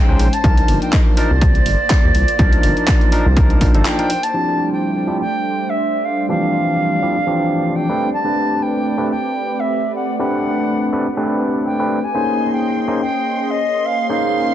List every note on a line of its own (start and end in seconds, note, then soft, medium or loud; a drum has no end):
0.00 0.40 G#3 medium
0.00 0.40 C#4 medium
0.00 0.40 C5 medium
0.00 4.35 C5 medium
0.00 0.35 G5 loud
0.08 0.16 C#2 medium
0.08 0.27 G#3 medium
0.08 0.27 C#4 medium
0.08 0.27 D#4 medium
0.08 0.27 C5 loud
0.19 0.29 A#1 medium
0.19 open hi-hat loud
0.33 0.81 A5 loud
0.33 closed hi-hat soft
0.43 0.62 C2 loud
0.43 1.14 F3 medium
0.43 4.30 A#3 medium
0.43 1.14 D4 medium
0.43 1.15 D#4 medium
0.43 4.30 F4 medium
0.43 1.15 A#4 medium
0.43 4.30 D5 medium
0.43 kick loud
0.43 closed hi-hat medium
0.57 closed hi-hat medium
0.68 0.78 G1 medium
0.68 open hi-hat medium
0.82 0.92 G5 medium
0.82 closed hi-hat soft
0.93 0.99 D#5 loud
0.93 kick loud
0.93 clap loud
0.93 closed hi-hat medium
1.17 1.30 F3 medium
1.17 1.30 D4 medium
1.17 1.30 D#4 medium
1.17 1.30 A#4 loud
1.17 3.54 D5 loud
1.17 open hi-hat loud
1.31 1.61 C2 loud
1.41 kick loud
1.41 closed hi-hat medium
1.55 closed hi-hat soft
1.66 1.75 G1 medium
1.66 open hi-hat medium
1.90 kick loud
1.90 clap loud
1.90 closed hi-hat medium
2.04 2.11 D#2 loud
2.15 2.24 C2 medium
2.15 open hi-hat loud
2.28 closed hi-hat soft
2.39 2.57 C2 loud
2.39 3.09 F3 medium
2.39 3.10 D4 medium
2.39 3.10 D#4 medium
2.39 3.10 A#4 loud
2.39 kick loud
2.39 closed hi-hat medium
2.53 closed hi-hat medium
2.63 2.73 G1 medium
2.63 open hi-hat medium
2.77 closed hi-hat soft
2.88 kick loud
2.88 clap loud
2.88 closed hi-hat medium
3.01 closed hi-hat soft
3.12 3.25 F3 medium
3.12 3.25 D4 medium
3.12 3.25 D#4 medium
3.12 3.26 A#4 loud
3.12 open hi-hat medium
3.26 3.56 C2 loud
3.36 3.72 F3 loud
3.36 3.72 D4 medium
3.36 3.72 D#4 medium
3.36 3.72 A#4 loud
3.36 kick loud
3.36 closed hi-hat medium
3.50 closed hi-hat soft
3.61 3.76 A#1 medium
3.61 kick medium
3.61 open hi-hat loud
3.74 3.82 G1 loud
3.74 3.96 F3 medium
3.74 3.96 D4 medium
3.74 3.96 D#4 medium
3.74 3.96 A4 medium
3.74 closed hi-hat soft
3.85 4.25 G5 loud
3.85 clap loud
3.85 closed hi-hat medium
3.99 4.09 F3 medium
3.99 4.10 D4 medium
3.99 4.10 D#4 medium
3.99 4.10 A#4 loud
3.99 closed hi-hat soft
4.10 open hi-hat loud
4.23 4.71 A5 loud
4.23 closed hi-hat medium
4.34 5.05 F3 medium
4.34 7.96 G3 medium
4.34 7.96 A3 medium
4.34 5.05 C4 medium
4.34 5.05 D4 medium
4.34 7.96 D4 medium
4.34 5.05 E4 medium
4.34 5.05 G4 medium
4.34 7.96 C5 medium
4.34 12.11 D5 medium
4.72 5.17 G5 medium
5.07 5.20 F3 medium
5.07 5.21 C4 medium
5.07 5.21 D4 medium
5.07 5.21 E4 medium
5.07 5.21 G4 medium
5.21 5.71 G5 loud
5.70 6.06 E5 medium
6.05 6.28 F5 medium
6.29 7.00 E3 medium
6.29 7.00 F3 medium
6.29 7.00 C4 medium
6.29 7.00 D4 medium
6.29 7.00 G4 medium
6.29 7.77 F5 loud
7.02 7.16 F3 medium
7.02 7.16 C4 medium
7.02 7.16 D4 medium
7.02 7.16 E4 medium
7.02 7.16 G4 medium
7.26 7.86 E3 medium
7.26 7.86 F3 medium
7.26 7.86 C4 medium
7.26 7.86 D4 medium
7.26 7.86 G4 loud
7.75 8.13 G5 medium
7.89 8.08 A3 medium
7.89 8.08 C4 medium
7.89 8.08 D4 medium
7.89 8.08 G4 medium
7.89 8.08 B4 medium
8.00 12.11 A3 medium
8.00 12.11 C4 medium
8.00 12.11 G4 medium
8.00 12.11 B4 medium
8.13 8.64 A5 loud
8.24 8.95 A3 medium
8.24 8.95 C4 medium
8.24 8.95 D4 medium
8.24 8.95 G4 medium
8.24 8.95 B4 medium
8.62 9.10 G5 medium
8.97 9.11 A3 medium
8.97 9.11 C4 medium
8.97 9.11 D4 medium
8.97 9.11 G4 medium
8.97 9.11 B4 medium
9.11 9.61 G5 medium
9.60 9.94 E5 medium
9.95 10.18 F#5 medium
10.19 10.90 A3 medium
10.19 10.90 C4 medium
10.19 10.90 D4 medium
10.19 10.90 G4 medium
10.19 10.90 B4 loud
10.19 11.35 F#5 medium
10.92 11.06 A3 medium
10.92 11.06 C4 medium
10.92 11.06 D4 medium
10.92 11.06 G4 medium
10.92 11.06 B4 medium
11.17 11.76 A3 medium
11.17 11.76 C4 medium
11.17 11.76 D4 medium
11.17 11.76 G4 medium
11.17 11.76 B4 loud
11.66 12.05 G5 medium
11.79 11.98 A3 medium
11.79 11.98 C4 medium
11.79 11.98 D4 medium
11.79 11.98 G4 medium
11.79 11.98 B4 loud
12.04 12.52 G#5 medium
12.14 12.85 A#3 medium
12.14 14.54 A#3 medium
12.14 12.85 C#4 medium
12.14 14.54 C#4 medium
12.14 12.85 D#4 medium
12.14 14.54 G#4 medium
12.14 12.85 G#4 medium
12.14 14.54 C5 medium
12.14 12.86 C5 medium
12.14 14.54 D#5 medium
12.14 14.54 C6 medium
12.53 12.98 G5 medium
12.88 13.01 A#3 medium
12.88 13.01 C#4 medium
12.88 13.01 D#4 medium
12.88 13.01 G#4 medium
12.88 13.01 C5 medium
13.01 13.52 G5 medium
13.50 13.87 D#5 medium
13.86 14.09 F5 medium
14.09 14.54 A#3 medium
14.09 14.54 C#4 medium
14.09 14.54 D#4 medium
14.09 14.54 G#4 medium
14.09 14.54 C5 loud
14.09 14.54 F5 loud